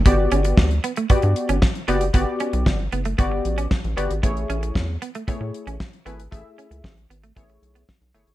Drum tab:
HH |x-xx-xxxxxxx-xxx|x-xx--xxx-xx-xxx|xxxx--xxx-xx-xxx|x-xx-xxxxxxx-xxx|
SD |----o-------o---|----o-------o---|----o-------o---|----o-------o---|
BD |o---o---o---o---|o---o---o---o---|o---o---o---o---|o---o---o---o---|